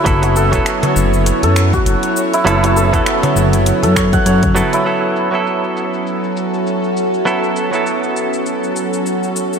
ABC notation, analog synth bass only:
X:1
M:4/4
L:1/16
Q:"Swing 16ths" 1/4=100
K:F#m
V:1 name="Analog synth bass" clef=bass
F,,,3 E,,, z2 F,,,2 z F,,2 z F,,, z3 | F,,,3 E,,, z2 F,,,2 z F,,2 z F,,2 z2 | z16 | z16 |]